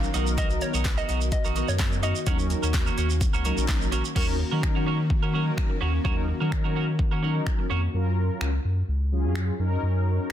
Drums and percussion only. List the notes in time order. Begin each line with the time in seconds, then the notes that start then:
0.03 shaker
0.14 closed hi-hat, shaker
0.27 shaker
0.38 kick, closed hi-hat, shaker
0.50 shaker
0.61 closed hi-hat, shaker
0.74 shaker
0.85 kick, snare, clap, closed hi-hat, shaker
0.98 shaker
1.09 closed hi-hat, shaker
1.21 shaker
1.32 kick, closed hi-hat, shaker
1.45 shaker
1.56 closed hi-hat, shaker
1.69 shaker
1.79 kick, snare, clap, closed hi-hat, shaker
1.92 shaker
2.03 closed hi-hat, shaker
2.16 shaker
2.27 kick, closed hi-hat, shaker
2.39 shaker
2.50 closed hi-hat, shaker
2.63 shaker
2.74 kick, snare, clap, closed hi-hat, shaker
2.86 shaker
2.98 closed hi-hat, shaker
3.10 shaker
3.21 kick, closed hi-hat, shaker
3.34 shaker
3.45 closed hi-hat, shaker
3.58 shaker
3.68 kick, snare, clap, closed hi-hat, shaker
3.82 shaker
3.92 closed hi-hat, shaker
4.05 shaker
4.16 kick, crash
4.63 finger snap, kick
5.10 kick
5.58 finger snap, kick
6.05 kick
6.52 finger snap, kick
6.99 kick
7.46 finger snap, kick
8.41 finger snap
9.35 finger snap